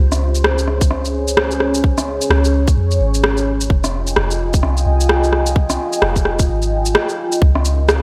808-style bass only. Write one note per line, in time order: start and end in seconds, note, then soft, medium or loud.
0.00 2.19 C#2 loud
2.30 2.75 C#2 medium
2.77 2.99 F2 medium
3.00 3.69 G#1 loud
3.70 4.15 F1 loud
4.17 4.62 F1 medium
4.63 4.85 C2 medium
4.86 5.78 C2 medium
6.02 6.47 F1 loud
6.48 6.95 G#1 loud
7.41 8.02 C#2 loud